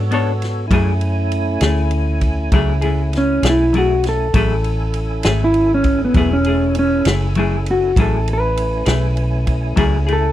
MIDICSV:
0, 0, Header, 1, 6, 480
1, 0, Start_track
1, 0, Key_signature, 3, "minor"
1, 0, Tempo, 604047
1, 563, Time_signature, 12, 3, 24, 8
1, 8203, End_track
2, 0, Start_track
2, 0, Title_t, "Clean electric guitar"
2, 0, Program_c, 0, 27
2, 88, Note_on_c, 0, 59, 59
2, 98, Note_on_c, 0, 62, 64
2, 106, Note_on_c, 0, 69, 67
2, 112, Note_on_c, 0, 73, 72
2, 230, Note_off_c, 0, 59, 0
2, 235, Note_off_c, 0, 62, 0
2, 239, Note_off_c, 0, 69, 0
2, 242, Note_off_c, 0, 73, 0
2, 564, Note_on_c, 0, 54, 86
2, 570, Note_on_c, 0, 57, 90
2, 575, Note_on_c, 0, 64, 77
2, 582, Note_on_c, 0, 68, 90
2, 708, Note_off_c, 0, 54, 0
2, 711, Note_off_c, 0, 57, 0
2, 714, Note_off_c, 0, 64, 0
2, 717, Note_off_c, 0, 68, 0
2, 1281, Note_on_c, 0, 68, 55
2, 1293, Note_on_c, 0, 64, 47
2, 1299, Note_on_c, 0, 57, 46
2, 1427, Note_off_c, 0, 68, 0
2, 1432, Note_off_c, 0, 64, 0
2, 1436, Note_off_c, 0, 57, 0
2, 2006, Note_on_c, 0, 54, 79
2, 2013, Note_on_c, 0, 57, 77
2, 2016, Note_on_c, 0, 64, 92
2, 2019, Note_on_c, 0, 68, 91
2, 2149, Note_off_c, 0, 54, 0
2, 2153, Note_off_c, 0, 57, 0
2, 2154, Note_off_c, 0, 64, 0
2, 2156, Note_off_c, 0, 68, 0
2, 2237, Note_on_c, 0, 68, 53
2, 2251, Note_on_c, 0, 64, 51
2, 2264, Note_on_c, 0, 57, 43
2, 2385, Note_off_c, 0, 68, 0
2, 2392, Note_off_c, 0, 64, 0
2, 2399, Note_off_c, 0, 57, 0
2, 2731, Note_on_c, 0, 68, 52
2, 2739, Note_on_c, 0, 64, 46
2, 2754, Note_on_c, 0, 57, 44
2, 2872, Note_off_c, 0, 68, 0
2, 2876, Note_off_c, 0, 64, 0
2, 2884, Note_off_c, 0, 57, 0
2, 2964, Note_on_c, 0, 54, 51
2, 2979, Note_on_c, 0, 57, 62
2, 2983, Note_on_c, 0, 64, 59
2, 2993, Note_on_c, 0, 68, 62
2, 3109, Note_off_c, 0, 54, 0
2, 3116, Note_off_c, 0, 57, 0
2, 3118, Note_off_c, 0, 64, 0
2, 3123, Note_off_c, 0, 68, 0
2, 3449, Note_on_c, 0, 54, 79
2, 3458, Note_on_c, 0, 57, 78
2, 3463, Note_on_c, 0, 64, 73
2, 3465, Note_on_c, 0, 68, 80
2, 3591, Note_off_c, 0, 54, 0
2, 3596, Note_off_c, 0, 57, 0
2, 3598, Note_off_c, 0, 64, 0
2, 3599, Note_off_c, 0, 68, 0
2, 4169, Note_on_c, 0, 68, 57
2, 4186, Note_on_c, 0, 64, 49
2, 4195, Note_on_c, 0, 57, 41
2, 4312, Note_off_c, 0, 68, 0
2, 4320, Note_off_c, 0, 64, 0
2, 4325, Note_off_c, 0, 57, 0
2, 4888, Note_on_c, 0, 54, 77
2, 4898, Note_on_c, 0, 57, 77
2, 4901, Note_on_c, 0, 64, 72
2, 4906, Note_on_c, 0, 68, 77
2, 5031, Note_off_c, 0, 54, 0
2, 5036, Note_off_c, 0, 57, 0
2, 5038, Note_off_c, 0, 64, 0
2, 5040, Note_off_c, 0, 68, 0
2, 5136, Note_on_c, 0, 68, 56
2, 5154, Note_on_c, 0, 64, 45
2, 5160, Note_on_c, 0, 57, 43
2, 5276, Note_off_c, 0, 68, 0
2, 5284, Note_off_c, 0, 64, 0
2, 5287, Note_off_c, 0, 57, 0
2, 5619, Note_on_c, 0, 68, 49
2, 5624, Note_on_c, 0, 64, 47
2, 5640, Note_on_c, 0, 57, 44
2, 5757, Note_off_c, 0, 68, 0
2, 5760, Note_off_c, 0, 64, 0
2, 5767, Note_off_c, 0, 57, 0
2, 5848, Note_on_c, 0, 54, 67
2, 5858, Note_on_c, 0, 57, 66
2, 5863, Note_on_c, 0, 64, 64
2, 5874, Note_on_c, 0, 68, 66
2, 5991, Note_off_c, 0, 54, 0
2, 5997, Note_off_c, 0, 57, 0
2, 5999, Note_off_c, 0, 64, 0
2, 6004, Note_off_c, 0, 68, 0
2, 6334, Note_on_c, 0, 54, 70
2, 6344, Note_on_c, 0, 57, 80
2, 6348, Note_on_c, 0, 64, 82
2, 6353, Note_on_c, 0, 68, 82
2, 6475, Note_off_c, 0, 54, 0
2, 6480, Note_off_c, 0, 57, 0
2, 6482, Note_off_c, 0, 64, 0
2, 6484, Note_off_c, 0, 68, 0
2, 7038, Note_on_c, 0, 68, 46
2, 7056, Note_on_c, 0, 64, 48
2, 7062, Note_on_c, 0, 57, 41
2, 7187, Note_off_c, 0, 68, 0
2, 7196, Note_off_c, 0, 64, 0
2, 7199, Note_off_c, 0, 57, 0
2, 7756, Note_on_c, 0, 54, 82
2, 7764, Note_on_c, 0, 57, 75
2, 7769, Note_on_c, 0, 64, 83
2, 7774, Note_on_c, 0, 68, 94
2, 7906, Note_off_c, 0, 54, 0
2, 7910, Note_off_c, 0, 57, 0
2, 7913, Note_off_c, 0, 64, 0
2, 7915, Note_off_c, 0, 68, 0
2, 7999, Note_on_c, 0, 68, 49
2, 8012, Note_on_c, 0, 64, 44
2, 8019, Note_on_c, 0, 57, 40
2, 8148, Note_off_c, 0, 68, 0
2, 8154, Note_off_c, 0, 64, 0
2, 8157, Note_off_c, 0, 57, 0
2, 8203, End_track
3, 0, Start_track
3, 0, Title_t, "Clean electric guitar"
3, 0, Program_c, 1, 27
3, 2523, Note_on_c, 1, 61, 83
3, 2737, Note_off_c, 1, 61, 0
3, 2778, Note_on_c, 1, 64, 81
3, 2985, Note_off_c, 1, 64, 0
3, 3005, Note_on_c, 1, 66, 77
3, 3218, Note_off_c, 1, 66, 0
3, 3247, Note_on_c, 1, 69, 86
3, 4275, Note_off_c, 1, 69, 0
3, 4325, Note_on_c, 1, 64, 86
3, 4539, Note_off_c, 1, 64, 0
3, 4564, Note_on_c, 1, 61, 86
3, 4779, Note_off_c, 1, 61, 0
3, 4805, Note_on_c, 1, 59, 75
3, 5019, Note_off_c, 1, 59, 0
3, 5031, Note_on_c, 1, 61, 90
3, 5368, Note_off_c, 1, 61, 0
3, 5395, Note_on_c, 1, 61, 94
3, 5614, Note_off_c, 1, 61, 0
3, 6126, Note_on_c, 1, 66, 89
3, 6340, Note_off_c, 1, 66, 0
3, 6370, Note_on_c, 1, 69, 75
3, 6582, Note_off_c, 1, 69, 0
3, 6621, Note_on_c, 1, 71, 77
3, 8003, Note_off_c, 1, 71, 0
3, 8047, Note_on_c, 1, 69, 80
3, 8203, Note_off_c, 1, 69, 0
3, 8203, End_track
4, 0, Start_track
4, 0, Title_t, "Tonewheel organ"
4, 0, Program_c, 2, 16
4, 0, Note_on_c, 2, 59, 66
4, 0, Note_on_c, 2, 66, 61
4, 0, Note_on_c, 2, 69, 61
4, 0, Note_on_c, 2, 73, 59
4, 524, Note_off_c, 2, 69, 0
4, 525, Note_off_c, 2, 66, 0
4, 526, Note_off_c, 2, 73, 0
4, 529, Note_off_c, 2, 59, 0
4, 533, Note_on_c, 2, 64, 64
4, 534, Note_on_c, 2, 61, 64
4, 536, Note_on_c, 2, 57, 58
4, 536, Note_on_c, 2, 80, 65
4, 3401, Note_off_c, 2, 61, 0
4, 3401, Note_off_c, 2, 64, 0
4, 3402, Note_off_c, 2, 57, 0
4, 3403, Note_off_c, 2, 80, 0
4, 3437, Note_on_c, 2, 69, 71
4, 3441, Note_on_c, 2, 64, 59
4, 3446, Note_on_c, 2, 80, 68
4, 3447, Note_on_c, 2, 61, 65
4, 6294, Note_off_c, 2, 69, 0
4, 6296, Note_off_c, 2, 64, 0
4, 6299, Note_off_c, 2, 61, 0
4, 6299, Note_off_c, 2, 80, 0
4, 6331, Note_on_c, 2, 64, 67
4, 6334, Note_on_c, 2, 57, 61
4, 6334, Note_on_c, 2, 80, 68
4, 6340, Note_on_c, 2, 61, 66
4, 8203, Note_off_c, 2, 57, 0
4, 8203, Note_off_c, 2, 61, 0
4, 8203, Note_off_c, 2, 64, 0
4, 8203, Note_off_c, 2, 80, 0
4, 8203, End_track
5, 0, Start_track
5, 0, Title_t, "Fingered electric bass"
5, 0, Program_c, 3, 33
5, 0, Note_on_c, 3, 44, 81
5, 538, Note_off_c, 3, 44, 0
5, 561, Note_on_c, 3, 42, 78
5, 1261, Note_off_c, 3, 42, 0
5, 1283, Note_on_c, 3, 38, 78
5, 1982, Note_off_c, 3, 38, 0
5, 2004, Note_on_c, 3, 37, 73
5, 2703, Note_off_c, 3, 37, 0
5, 2723, Note_on_c, 3, 35, 79
5, 3423, Note_off_c, 3, 35, 0
5, 3450, Note_on_c, 3, 33, 80
5, 4147, Note_off_c, 3, 33, 0
5, 4172, Note_on_c, 3, 32, 82
5, 4868, Note_off_c, 3, 32, 0
5, 4878, Note_on_c, 3, 28, 79
5, 5581, Note_off_c, 3, 28, 0
5, 5608, Note_on_c, 3, 30, 84
5, 6306, Note_off_c, 3, 30, 0
5, 6329, Note_on_c, 3, 33, 87
5, 7027, Note_off_c, 3, 33, 0
5, 7046, Note_on_c, 3, 35, 81
5, 7746, Note_off_c, 3, 35, 0
5, 7764, Note_on_c, 3, 37, 76
5, 8203, Note_off_c, 3, 37, 0
5, 8203, End_track
6, 0, Start_track
6, 0, Title_t, "Drums"
6, 91, Note_on_c, 9, 51, 60
6, 170, Note_off_c, 9, 51, 0
6, 332, Note_on_c, 9, 51, 54
6, 345, Note_on_c, 9, 38, 32
6, 412, Note_off_c, 9, 51, 0
6, 424, Note_off_c, 9, 38, 0
6, 562, Note_on_c, 9, 36, 100
6, 564, Note_on_c, 9, 51, 68
6, 641, Note_off_c, 9, 36, 0
6, 643, Note_off_c, 9, 51, 0
6, 802, Note_on_c, 9, 51, 57
6, 881, Note_off_c, 9, 51, 0
6, 1045, Note_on_c, 9, 51, 55
6, 1124, Note_off_c, 9, 51, 0
6, 1276, Note_on_c, 9, 51, 83
6, 1288, Note_on_c, 9, 38, 98
6, 1355, Note_off_c, 9, 51, 0
6, 1368, Note_off_c, 9, 38, 0
6, 1515, Note_on_c, 9, 51, 62
6, 1594, Note_off_c, 9, 51, 0
6, 1757, Note_on_c, 9, 51, 64
6, 1761, Note_on_c, 9, 36, 71
6, 1836, Note_off_c, 9, 51, 0
6, 1841, Note_off_c, 9, 36, 0
6, 2000, Note_on_c, 9, 51, 73
6, 2001, Note_on_c, 9, 36, 97
6, 2079, Note_off_c, 9, 51, 0
6, 2081, Note_off_c, 9, 36, 0
6, 2240, Note_on_c, 9, 51, 62
6, 2319, Note_off_c, 9, 51, 0
6, 2487, Note_on_c, 9, 51, 60
6, 2499, Note_on_c, 9, 38, 29
6, 2566, Note_off_c, 9, 51, 0
6, 2579, Note_off_c, 9, 38, 0
6, 2726, Note_on_c, 9, 51, 78
6, 2738, Note_on_c, 9, 38, 109
6, 2805, Note_off_c, 9, 51, 0
6, 2818, Note_off_c, 9, 38, 0
6, 2969, Note_on_c, 9, 51, 61
6, 3049, Note_off_c, 9, 51, 0
6, 3207, Note_on_c, 9, 51, 66
6, 3219, Note_on_c, 9, 38, 30
6, 3286, Note_off_c, 9, 51, 0
6, 3299, Note_off_c, 9, 38, 0
6, 3447, Note_on_c, 9, 51, 79
6, 3448, Note_on_c, 9, 36, 103
6, 3527, Note_off_c, 9, 51, 0
6, 3528, Note_off_c, 9, 36, 0
6, 3688, Note_on_c, 9, 51, 59
6, 3768, Note_off_c, 9, 51, 0
6, 3922, Note_on_c, 9, 51, 57
6, 4001, Note_off_c, 9, 51, 0
6, 4156, Note_on_c, 9, 51, 76
6, 4169, Note_on_c, 9, 38, 104
6, 4236, Note_off_c, 9, 51, 0
6, 4248, Note_off_c, 9, 38, 0
6, 4400, Note_on_c, 9, 51, 56
6, 4480, Note_off_c, 9, 51, 0
6, 4639, Note_on_c, 9, 51, 60
6, 4645, Note_on_c, 9, 36, 74
6, 4718, Note_off_c, 9, 51, 0
6, 4724, Note_off_c, 9, 36, 0
6, 4880, Note_on_c, 9, 51, 66
6, 4884, Note_on_c, 9, 36, 104
6, 4960, Note_off_c, 9, 51, 0
6, 4963, Note_off_c, 9, 36, 0
6, 5121, Note_on_c, 9, 51, 59
6, 5200, Note_off_c, 9, 51, 0
6, 5361, Note_on_c, 9, 51, 62
6, 5440, Note_off_c, 9, 51, 0
6, 5602, Note_on_c, 9, 51, 84
6, 5615, Note_on_c, 9, 38, 104
6, 5682, Note_off_c, 9, 51, 0
6, 5694, Note_off_c, 9, 38, 0
6, 5842, Note_on_c, 9, 51, 61
6, 5921, Note_off_c, 9, 51, 0
6, 6088, Note_on_c, 9, 51, 60
6, 6168, Note_off_c, 9, 51, 0
6, 6328, Note_on_c, 9, 36, 100
6, 6333, Note_on_c, 9, 51, 75
6, 6408, Note_off_c, 9, 36, 0
6, 6413, Note_off_c, 9, 51, 0
6, 6575, Note_on_c, 9, 51, 66
6, 6655, Note_off_c, 9, 51, 0
6, 6813, Note_on_c, 9, 51, 68
6, 6892, Note_off_c, 9, 51, 0
6, 7041, Note_on_c, 9, 51, 78
6, 7054, Note_on_c, 9, 38, 101
6, 7120, Note_off_c, 9, 51, 0
6, 7133, Note_off_c, 9, 38, 0
6, 7285, Note_on_c, 9, 51, 57
6, 7364, Note_off_c, 9, 51, 0
6, 7524, Note_on_c, 9, 51, 61
6, 7526, Note_on_c, 9, 36, 74
6, 7603, Note_off_c, 9, 51, 0
6, 7606, Note_off_c, 9, 36, 0
6, 7763, Note_on_c, 9, 51, 75
6, 7765, Note_on_c, 9, 36, 103
6, 7842, Note_off_c, 9, 51, 0
6, 7845, Note_off_c, 9, 36, 0
6, 8013, Note_on_c, 9, 51, 53
6, 8092, Note_off_c, 9, 51, 0
6, 8203, End_track
0, 0, End_of_file